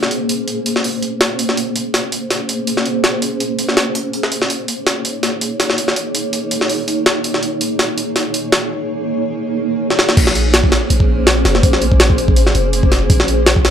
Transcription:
Already playing: A#3 C#4 G#4 C5
0.03 snare
0.11 open hi-hat
0.29 open hi-hat
0.48 open hi-hat
0.66 open hi-hat
0.76 snare
0.84 open hi-hat
1.03 open hi-hat
1.21 snare, open hi-hat
1.39 A#3 C#4 G#4 C5, open hi-hat
1.49 snare
1.57 open hi-hat
1.76 open hi-hat
1.94 snare, open hi-hat
2.12 open hi-hat
2.31 snare, open hi-hat
2.49 open hi-hat
2.67 open hi-hat
2.77 snare
2.86 open hi-hat
3.04 snare, open hi-hat
3.22 open hi-hat
3.40 open hi-hat
3.59 open hi-hat
3.69 snare
3.77 snare, open hi-hat
3.95 open hi-hat
4.13 open hi-hat
4.23 snare
4.31 A#3 D#4 G#4 C#5, open hi-hat
4.42 snare
4.50 open hi-hat
4.68 open hi-hat
4.87 snare, open hi-hat
5.05 open hi-hat
5.23 snare, open hi-hat
5.41 open hi-hat
5.60 snare, open hi-hat
5.70 snare
5.78 open hi-hat
5.88 snare
5.96 open hi-hat
6.15 open hi-hat
6.33 open hi-hat
6.51 open hi-hat
6.61 snare
6.69 open hi-hat
6.88 open hi-hat
7.06 snare, open hi-hat
7.24 A#3 D#4 G#4 C#5, open hi-hat
7.34 snare
7.43 open hi-hat
7.61 open hi-hat
7.79 snare, open hi-hat
7.98 open hi-hat
8.16 snare, open hi-hat
8.34 open hi-hat
8.52 snare, open hi-hat
9.90 snare
9.99 snare
10.09 snare
10.17 A#1, kick, open hi-hat, crash
10.27 snare
10.35 open hi-hat
10.54 snare, open hi-hat
10.64 kick
10.72 snare, open hi-hat
10.90 A#1, open hi-hat
11.00 kick
11.27 snare, open hi-hat
11.45 F1, snare, open hi-hat
11.55 snare
11.63 A#1, kick, open hi-hat
11.73 snare
11.82 open hi-hat
11.92 kick
12.00 snare, open hi-hat
12.10 kick
12.18 open hi-hat
12.28 kick
12.36 G#1, open hi-hat
12.47 snare
12.55 F1, open hi-hat
12.73 open hi-hat
12.83 kick
12.92 snare, open hi-hat
13.10 A#1, kick, open hi-hat
13.20 snare
13.28 open hi-hat
13.46 snare, open hi-hat
13.56 kick
13.65 snare, open hi-hat

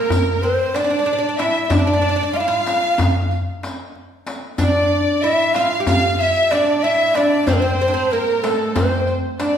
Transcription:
Already playing: A#3 A#4
0.10 riq, darbuka dum
0.43 C4 C5, riq
0.74 D4 D5, riq, darbuka tek
0.84 D4
0.90 D4
0.99 D4
1.06 D4, darbuka ka
1.13 D4
1.19 D4
1.29 D4
1.39 E4 E5, riq, darbuka tek
1.65 E5
1.70 D4 D5, riq, darbuka dum
1.79 D4
1.87 D4
1.93 D4
2.02 D4
2.09 D4
2.16 D4
2.23 D4
2.33 F4 F5, riq, darbuka ka
2.40 E4
2.48 F4
2.67 riq, darbuka tek
2.98 riq, darbuka dum
3.31 riq
3.63 riq, darbuka tek
3.95 darbuka ka
4.27 riq, darbuka tek
4.58 D4 D5, riq, darbuka dum
5.22 E4 E5, riq, darbuka ka
5.54 F4 F5, riq, darbuka tek
5.80 G4
5.86 F4 F5, riq, darbuka dum
6.20 E5, riq
6.51 D4 D5, riq, darbuka tek
6.83 E4 E5, darbuka ka
7.14 D4 D5, riq, darbuka tek
7.47 C4 C5, riq, darbuka dum
7.53 A#4
7.60 C4 C5
7.79 C4 C5, riq
7.88 D4
7.94 C4
8.11 A#3 A#4, riq, darbuka ka
8.42 A3 A4, riq, darbuka tek
8.75 C4 C5, riq, darbuka dum
9.07 riq, darbuka ka
9.39 D4 D5, riq, darbuka tek

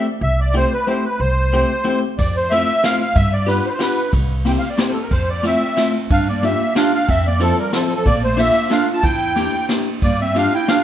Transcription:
0.21 C2 E5
0.40 D5
0.54 A3 C4 E4 G4 C5
0.73 B4
0.87 A3 C4 E4 G4 C5
1.05 B4
1.20 C2 C5
1.53 A3 C4 E4 G4
1.84 A3 C4 E4 G4
2.18 F2 D5, kick, ride
2.36 C5
2.50 A3 C4 E4 F4 E5, ride
2.84 A3 C4 E4 F4 F5, snare, ride
3.01 F5
3.15 G2 E5, kick, ride
3.33 D5
3.47 B3 D4 F4 G4 B4, ride
3.66 B4 C5
3.73 C5
3.79 B3 D4 F4 G4 B4, snare, ride
4.13 C2, kick, ride
4.45 A#3 C4 E4 G4 G5, ride
4.59 F5
4.70 D5
4.78 A#3 C4 E4 G4 C5, snare, ride
4.82 D5
4.87 A4 C5
5.03 A#4
5.11 F2 C5, kick, ride
5.30 D5
5.43 A3 C4 E4 F4 E5, ride
5.77 A3 C4 E4 F4, snare, ride
6.10 G2 D4 F5, kick, ride
6.29 A#3 D5
6.43 A#3 D4 F4 G4 E5, ride
6.75 A#3 D4 F4 G4 F5, snare, ride
6.94 D4 F5
7.08 F2 C4 E5, kick, ride
7.26 A#3 D5
7.40 F3 C4 E4 F4 A4, ride
7.58 G3 A#4
7.73 F3 C4 E4 F4 A4, snare, ride
7.84 F3 A4
7.95 F3 A4
8.06 A#1 A#3 D5, kick, ride
8.24 A3 C5
8.37 A#3 D4 F4 A4 E5, ride
8.70 A#3 D4 F4 A4 F5, snare, ride
8.93 F4 A5
9.03 E2 E4 G5, kick, ride
9.36 A#3 D4 E4 G4, ride
9.69 A#3 D4 E4 G4, snare, ride
10.02 G2 A#3 D5, kick, ride
10.21 C4 E5
10.35 A#3 D4 F4 G4 F5, ride
10.54 E4 G5
10.68 A#3 D4 F4 G4 F5, snare, ride

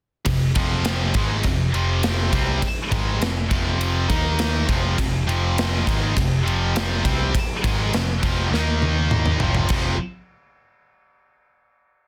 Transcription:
0.26 F1 F2 C3, kick, ride
0.55 F1 F2 C3 F3, kick, ride
0.85 snare, ride
1.14 G#1 G#2 D#3 G#3, kick, ride
1.43 F1 F2 C3, kick, ride
1.74 F1 F2 C3 F3, ride
2.03 snare, ride
2.29 C2 C3, kick, ride
2.34 C3 G3 C4
2.62 kick, ride
2.91 G#1 G#2 D#3 G#3, kick, ride
3.20 F1 F2 C3, snare, ride
3.51 F1 F2 C3 F3, kick, ride
3.81 ride
4.10 D#2 D#3 A#3 D#4, kick, ride
4.39 snare, ride
4.67 F1 F2 C3 F3, kick, ride
4.95 F1 F2 C3, kick, ride
4.99 C3
5.27 F1 F2 C3 F3, ride
5.58 snare, ride
5.86 G#1 G#2 D#3 G#3, kick, ride
6.16 F1 F2 C3, kick, ride
6.46 F1 F2 C3 F3, ride
6.76 snare, ride
7.05 C2 C3 G3 C4, kick, ride
7.35 kick, ride
7.64 G#1 G#2 D#3 G#3, kick, ride
7.93 F1 F2 C3, snare, ride
8.23 F1 F2 C3 F3, kick, ride
8.52 D#2 D#3 A#3 D#4, snare
8.82 high tom
9.11 mid tom
9.26 mid tom
9.40 F1 F2 C3 F3, floor tom
9.55 floor tom
9.69 F1 F2 C3 F3, kick, crash

